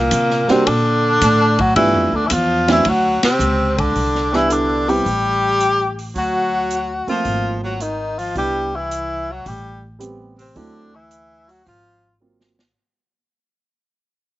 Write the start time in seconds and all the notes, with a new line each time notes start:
Already playing: A#2 A#3
0.11 C3, kick, hi-hat pedal, ride
0.30 snare
0.48 C3 G3 A#3 C4 D4 F#4, muted upright bass stroke, snare
0.65 A#2 D3 D4, kick, ride
1.21 A2, kick, snare, hi-hat pedal, ride
1.59 F#3 F#4, kick, ride
1.76 G2 E3 G3 A3 B3 D4 E4 F4, kick, ride
1.93 F2
2.12 D2 D3 D4
2.25 E3 E4
2.30 E2 F3 F4, kick, hi-hat pedal, ride
2.67 E3 F#3 A3 C4 D4 E4, snare, ride
2.85 D2 F#3, kick, ride
2.89 F#4
3.22 C3 C4, muted upright bass stroke, snare, ride
3.39 C#2, hi-hat pedal
3.77 D3 D4, kick, ride
3.96 C2, kick, open hi-hat
4.15 snare
4.32 E3 G3 B3 D4 E4, snare
4.49 D3 D4, closed hi-hat
4.88 G3 B3 C4 E4 G4, open hi-hat
5.06 A1, kick, open hi-hat
5.60 closed hi-hat
5.99 open hi-hat
6.15 D2 F#3 F#4, kick, open hi-hat
6.71 closed hi-hat
7.07 F3 A3 A#3 C4 F4, muted upright bass stroke, open hi-hat
7.25 G#1, kick, open hi-hat
7.63 F#3 F#4
7.80 D#3 D#4, closed hi-hat
8.18 F3 F4, open hi-hat
8.35 C2 G3 B3 D4 E4 G4, kick, open hi-hat
8.75 E3 E4
8.91 closed hi-hat
9.30 F#3 F#4
9.46 A1 G3 G4, kick, open hi-hat
9.99 G3 B3 C4 G4, closed hi-hat
10.38 C3 C4, open hi-hat
10.55 D2 D3 F#3 A3 C4 D4 E4, kick, open hi-hat
10.95 E3 E4
11.11 closed hi-hat
11.48 F#3 F#4, open hi-hat
11.65 G#1 F3 F4, kick, open hi-hat
12.20 F#3 A#3 C4 F4
12.41 snare
12.59 snare